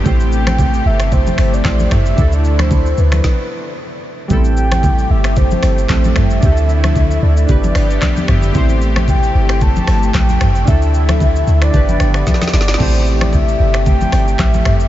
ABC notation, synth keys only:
X:1
M:4/4
L:1/8
Q:"Swing 16ths" 1/4=113
K:Am
V:1 name="Synth keys"
[A,CEGc]6 [A,CEGc]2 | [DEA]4 z4 | [G,A,B,CEA]6 [G,A,CEA]2 | [DEGA]4 [DGB]4 |
[A,CEGc]8 | [DEA]4 [DGB]4 | [A,CEGc]8 |]